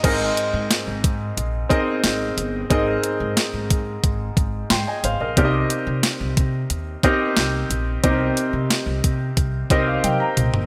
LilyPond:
<<
  \new Staff \with { instrumentName = "Grand piano" } { \time 4/4 \key aes \major \tempo 4 = 90 << { r1 | r2. <g'' c'''>16 <ees'' aes''>16 <c'' f''>16 <bes' ees''>16~ | <bes' ees''>16 r2. r8. | r2 r8 ees''16 f''16 g''16 bes''8. | } \\ { <c' ees' aes' bes' ees''>2 r8 <c' ees' aes' bes' ees''>4. | <c' ees' aes' bes' ees''>2 r2 | <c' ees' g' bes' d'' ees''>2 r8 <c' ees' g' bes' ees''>4. | <c' ees' g' bes' ees''>2 r8 <c' ees' g' bes'>4. | } >> }
  \new Staff \with { instrumentName = "Grand piano" } { \clef bass \time 4/4 \key aes \major aes,4. r2 r8 | aes,4. r2 r8 | c4. r2 r8 | c4. r2 r8 | }
  \new Staff \with { instrumentName = "Upright bass" } { \clef bass \time 4/4 \key aes \major aes,,8 r16 aes,16 r16 aes,,16 aes,8 bes,,8 r8 aes,,8 g,,8 | aes,,8 r16 aes,16 r16 aes,,16 aes,8 aes,,8 aes,,8 aes,16 r16 aes,,16 bes,,16 | c,8 r16 c16 r16 c,16 c8 ees,8 r8 c,8 bes,,8 | c,8 r16 c16 r16 c,16 c8 c,8 c,8 c16 r16 c,16 g,,16 | }
  \new DrumStaff \with { instrumentName = "Drums" } \drummode { \time 4/4 <cymc hh bd>8 hh8 <hh sn tamb>8 <hh bd>8 hh8 <hh bd>8 <hh sn tamb>8 hh8 | <hh bd>8 hh8 <hh sn tamb>8 <hh bd>8 <hh bd>8 <hh bd>8 <hh sn tamb>8 hh8 | <hh bd>8 hh8 <hh sn tamb>8 <hh bd>8 hh8 <hh bd>8 <hh sn tamb>8 hh8 | <hh bd>8 hh8 <hh sn tamb>8 <hh bd>8 <hh bd>8 <hh bd>8 <hh tommh>8 <hh toml>16 tomfh16 | }
>>